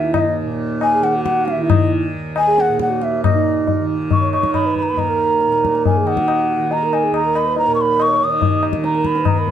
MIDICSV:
0, 0, Header, 1, 5, 480
1, 0, Start_track
1, 0, Tempo, 440205
1, 1608, Time_signature, 4, 2, 24, 8
1, 4956, Tempo, 429492
1, 10505, End_track
2, 0, Start_track
2, 0, Title_t, "Bansuri"
2, 0, Program_c, 0, 73
2, 0, Note_on_c, 0, 76, 89
2, 156, Note_off_c, 0, 76, 0
2, 163, Note_on_c, 0, 75, 72
2, 386, Note_off_c, 0, 75, 0
2, 903, Note_on_c, 0, 80, 103
2, 1129, Note_on_c, 0, 78, 90
2, 1145, Note_off_c, 0, 80, 0
2, 1347, Note_off_c, 0, 78, 0
2, 1353, Note_on_c, 0, 78, 97
2, 1587, Note_on_c, 0, 76, 97
2, 1604, Note_off_c, 0, 78, 0
2, 1779, Note_off_c, 0, 76, 0
2, 1793, Note_on_c, 0, 76, 54
2, 1846, Note_on_c, 0, 75, 79
2, 1862, Note_off_c, 0, 76, 0
2, 2088, Note_off_c, 0, 75, 0
2, 2591, Note_on_c, 0, 80, 105
2, 2840, Note_on_c, 0, 78, 106
2, 2856, Note_off_c, 0, 80, 0
2, 3064, Note_off_c, 0, 78, 0
2, 3072, Note_on_c, 0, 78, 95
2, 3308, Note_on_c, 0, 76, 85
2, 3324, Note_off_c, 0, 78, 0
2, 3524, Note_off_c, 0, 76, 0
2, 3530, Note_on_c, 0, 75, 84
2, 4201, Note_off_c, 0, 75, 0
2, 4497, Note_on_c, 0, 85, 86
2, 4711, Note_off_c, 0, 85, 0
2, 4726, Note_on_c, 0, 85, 82
2, 4943, Note_off_c, 0, 85, 0
2, 4953, Note_on_c, 0, 83, 81
2, 5180, Note_off_c, 0, 83, 0
2, 5217, Note_on_c, 0, 83, 77
2, 5273, Note_on_c, 0, 82, 63
2, 5289, Note_off_c, 0, 83, 0
2, 5346, Note_on_c, 0, 83, 89
2, 5363, Note_off_c, 0, 82, 0
2, 5455, Note_on_c, 0, 82, 103
2, 5471, Note_off_c, 0, 83, 0
2, 6416, Note_off_c, 0, 82, 0
2, 6434, Note_on_c, 0, 80, 83
2, 6664, Note_on_c, 0, 78, 97
2, 6681, Note_off_c, 0, 80, 0
2, 7391, Note_on_c, 0, 82, 101
2, 7408, Note_off_c, 0, 78, 0
2, 7633, Note_on_c, 0, 80, 89
2, 7650, Note_off_c, 0, 82, 0
2, 7863, Note_off_c, 0, 80, 0
2, 7874, Note_on_c, 0, 82, 96
2, 8107, Note_on_c, 0, 83, 92
2, 8124, Note_off_c, 0, 82, 0
2, 8340, Note_off_c, 0, 83, 0
2, 8352, Note_on_c, 0, 82, 98
2, 8510, Note_off_c, 0, 82, 0
2, 8538, Note_on_c, 0, 85, 67
2, 8606, Note_on_c, 0, 83, 97
2, 8622, Note_off_c, 0, 85, 0
2, 8837, Note_on_c, 0, 85, 102
2, 8854, Note_off_c, 0, 83, 0
2, 9086, Note_on_c, 0, 87, 92
2, 9103, Note_off_c, 0, 85, 0
2, 9544, Note_off_c, 0, 87, 0
2, 9770, Note_on_c, 0, 82, 75
2, 10005, Note_on_c, 0, 83, 87
2, 10022, Note_off_c, 0, 82, 0
2, 10248, Note_on_c, 0, 82, 79
2, 10265, Note_off_c, 0, 83, 0
2, 10363, Note_on_c, 0, 83, 76
2, 10380, Note_off_c, 0, 82, 0
2, 10505, Note_off_c, 0, 83, 0
2, 10505, End_track
3, 0, Start_track
3, 0, Title_t, "Alto flute"
3, 0, Program_c, 1, 73
3, 39, Note_on_c, 1, 64, 63
3, 293, Note_on_c, 1, 63, 55
3, 310, Note_off_c, 1, 64, 0
3, 529, Note_off_c, 1, 63, 0
3, 1010, Note_on_c, 1, 68, 64
3, 1262, Note_on_c, 1, 66, 73
3, 1278, Note_off_c, 1, 68, 0
3, 1750, Note_on_c, 1, 64, 57
3, 1766, Note_off_c, 1, 66, 0
3, 2221, Note_off_c, 1, 64, 0
3, 2693, Note_on_c, 1, 68, 77
3, 3160, Note_on_c, 1, 66, 69
3, 3176, Note_off_c, 1, 68, 0
3, 3642, Note_off_c, 1, 66, 0
3, 3650, Note_on_c, 1, 63, 65
3, 4320, Note_off_c, 1, 63, 0
3, 4584, Note_on_c, 1, 73, 66
3, 5086, Note_on_c, 1, 71, 68
3, 5102, Note_off_c, 1, 73, 0
3, 5566, Note_on_c, 1, 70, 60
3, 5583, Note_off_c, 1, 71, 0
3, 6546, Note_on_c, 1, 68, 58
3, 6562, Note_off_c, 1, 70, 0
3, 6777, Note_on_c, 1, 66, 59
3, 6794, Note_off_c, 1, 68, 0
3, 7511, Note_on_c, 1, 70, 57
3, 7527, Note_off_c, 1, 66, 0
3, 7740, Note_on_c, 1, 68, 62
3, 7757, Note_off_c, 1, 70, 0
3, 7969, Note_off_c, 1, 68, 0
3, 7976, Note_on_c, 1, 70, 60
3, 8215, Note_on_c, 1, 71, 64
3, 8231, Note_off_c, 1, 70, 0
3, 8448, Note_on_c, 1, 70, 71
3, 8465, Note_off_c, 1, 71, 0
3, 8910, Note_on_c, 1, 73, 67
3, 8927, Note_off_c, 1, 70, 0
3, 9156, Note_on_c, 1, 75, 73
3, 9172, Note_off_c, 1, 73, 0
3, 9638, Note_off_c, 1, 75, 0
3, 9881, Note_on_c, 1, 70, 54
3, 10134, Note_on_c, 1, 71, 54
3, 10151, Note_off_c, 1, 70, 0
3, 10376, Note_on_c, 1, 70, 54
3, 10393, Note_off_c, 1, 71, 0
3, 10491, Note_off_c, 1, 70, 0
3, 10505, End_track
4, 0, Start_track
4, 0, Title_t, "Tanpura"
4, 0, Program_c, 2, 104
4, 0, Note_on_c, 2, 39, 56
4, 0, Note_on_c, 2, 46, 63
4, 0, Note_on_c, 2, 51, 60
4, 461, Note_off_c, 2, 46, 0
4, 465, Note_on_c, 2, 46, 63
4, 1092, Note_off_c, 2, 51, 0
4, 1092, Note_on_c, 2, 51, 57
4, 1709, Note_off_c, 2, 51, 0
4, 1709, Note_on_c, 2, 51, 58
4, 2323, Note_off_c, 2, 39, 0
4, 2327, Note_on_c, 2, 39, 61
4, 2928, Note_off_c, 2, 46, 0
4, 2933, Note_on_c, 2, 46, 58
4, 3544, Note_off_c, 2, 46, 0
4, 3544, Note_on_c, 2, 46, 51
4, 4148, Note_off_c, 2, 51, 0
4, 4148, Note_on_c, 2, 51, 54
4, 4748, Note_off_c, 2, 51, 0
4, 4748, Note_on_c, 2, 51, 65
4, 5370, Note_off_c, 2, 39, 0
4, 5374, Note_on_c, 2, 39, 60
4, 5987, Note_off_c, 2, 46, 0
4, 5987, Note_on_c, 2, 46, 59
4, 6605, Note_off_c, 2, 51, 0
4, 6605, Note_on_c, 2, 51, 65
4, 7225, Note_off_c, 2, 51, 0
4, 7225, Note_on_c, 2, 51, 62
4, 7831, Note_off_c, 2, 39, 0
4, 7835, Note_on_c, 2, 39, 68
4, 8441, Note_off_c, 2, 46, 0
4, 8445, Note_on_c, 2, 46, 64
4, 9056, Note_off_c, 2, 51, 0
4, 9056, Note_on_c, 2, 51, 65
4, 9680, Note_off_c, 2, 51, 0
4, 9680, Note_on_c, 2, 51, 67
4, 10279, Note_off_c, 2, 39, 0
4, 10283, Note_on_c, 2, 39, 61
4, 10505, Note_off_c, 2, 39, 0
4, 10505, Note_off_c, 2, 46, 0
4, 10505, Note_off_c, 2, 51, 0
4, 10505, End_track
5, 0, Start_track
5, 0, Title_t, "Tabla"
5, 153, Note_on_c, 9, 60, 92
5, 153, Note_on_c, 9, 64, 82
5, 262, Note_off_c, 9, 60, 0
5, 262, Note_off_c, 9, 64, 0
5, 885, Note_on_c, 9, 60, 70
5, 994, Note_off_c, 9, 60, 0
5, 1126, Note_on_c, 9, 62, 76
5, 1235, Note_off_c, 9, 62, 0
5, 1369, Note_on_c, 9, 37, 80
5, 1478, Note_off_c, 9, 37, 0
5, 1610, Note_on_c, 9, 62, 68
5, 1719, Note_off_c, 9, 62, 0
5, 1850, Note_on_c, 9, 60, 92
5, 1850, Note_on_c, 9, 64, 85
5, 1959, Note_off_c, 9, 60, 0
5, 1959, Note_off_c, 9, 64, 0
5, 2571, Note_on_c, 9, 60, 76
5, 2680, Note_off_c, 9, 60, 0
5, 2814, Note_on_c, 9, 62, 80
5, 2923, Note_off_c, 9, 62, 0
5, 3047, Note_on_c, 9, 37, 76
5, 3156, Note_off_c, 9, 37, 0
5, 3287, Note_on_c, 9, 62, 80
5, 3396, Note_off_c, 9, 62, 0
5, 3535, Note_on_c, 9, 60, 91
5, 3535, Note_on_c, 9, 64, 74
5, 3644, Note_off_c, 9, 60, 0
5, 3644, Note_off_c, 9, 64, 0
5, 4007, Note_on_c, 9, 63, 70
5, 4007, Note_on_c, 9, 64, 70
5, 4116, Note_off_c, 9, 63, 0
5, 4116, Note_off_c, 9, 64, 0
5, 4476, Note_on_c, 9, 63, 74
5, 4476, Note_on_c, 9, 64, 68
5, 4585, Note_off_c, 9, 63, 0
5, 4585, Note_off_c, 9, 64, 0
5, 4724, Note_on_c, 9, 60, 57
5, 4833, Note_off_c, 9, 60, 0
5, 4835, Note_on_c, 9, 37, 63
5, 4944, Note_off_c, 9, 37, 0
5, 4951, Note_on_c, 9, 60, 75
5, 4951, Note_on_c, 9, 64, 65
5, 5063, Note_off_c, 9, 60, 0
5, 5063, Note_off_c, 9, 64, 0
5, 5188, Note_on_c, 9, 64, 52
5, 5300, Note_off_c, 9, 64, 0
5, 5435, Note_on_c, 9, 63, 71
5, 5435, Note_on_c, 9, 64, 60
5, 5546, Note_off_c, 9, 63, 0
5, 5546, Note_off_c, 9, 64, 0
5, 5916, Note_on_c, 9, 62, 68
5, 6028, Note_off_c, 9, 62, 0
5, 6049, Note_on_c, 9, 62, 65
5, 6161, Note_off_c, 9, 62, 0
5, 6187, Note_on_c, 9, 37, 61
5, 6299, Note_off_c, 9, 37, 0
5, 6302, Note_on_c, 9, 62, 57
5, 6414, Note_off_c, 9, 62, 0
5, 6419, Note_on_c, 9, 63, 78
5, 6419, Note_on_c, 9, 64, 67
5, 6531, Note_off_c, 9, 63, 0
5, 6531, Note_off_c, 9, 64, 0
5, 6660, Note_on_c, 9, 60, 55
5, 6772, Note_off_c, 9, 60, 0
5, 6772, Note_on_c, 9, 37, 67
5, 6884, Note_off_c, 9, 37, 0
5, 6895, Note_on_c, 9, 60, 76
5, 7007, Note_off_c, 9, 60, 0
5, 7374, Note_on_c, 9, 63, 72
5, 7486, Note_off_c, 9, 63, 0
5, 7621, Note_on_c, 9, 60, 57
5, 7733, Note_off_c, 9, 60, 0
5, 7855, Note_on_c, 9, 60, 75
5, 7967, Note_off_c, 9, 60, 0
5, 8095, Note_on_c, 9, 60, 61
5, 8207, Note_off_c, 9, 60, 0
5, 8330, Note_on_c, 9, 63, 73
5, 8441, Note_off_c, 9, 63, 0
5, 8813, Note_on_c, 9, 60, 76
5, 8924, Note_off_c, 9, 60, 0
5, 9283, Note_on_c, 9, 63, 70
5, 9283, Note_on_c, 9, 64, 63
5, 9395, Note_off_c, 9, 63, 0
5, 9395, Note_off_c, 9, 64, 0
5, 9519, Note_on_c, 9, 60, 60
5, 9631, Note_off_c, 9, 60, 0
5, 9631, Note_on_c, 9, 37, 65
5, 9743, Note_off_c, 9, 37, 0
5, 9756, Note_on_c, 9, 62, 76
5, 9868, Note_off_c, 9, 62, 0
5, 9875, Note_on_c, 9, 62, 61
5, 9985, Note_on_c, 9, 37, 59
5, 9987, Note_off_c, 9, 62, 0
5, 10097, Note_off_c, 9, 37, 0
5, 10106, Note_on_c, 9, 62, 65
5, 10217, Note_on_c, 9, 60, 73
5, 10217, Note_on_c, 9, 64, 66
5, 10218, Note_off_c, 9, 62, 0
5, 10329, Note_off_c, 9, 60, 0
5, 10329, Note_off_c, 9, 64, 0
5, 10456, Note_on_c, 9, 64, 53
5, 10505, Note_off_c, 9, 64, 0
5, 10505, End_track
0, 0, End_of_file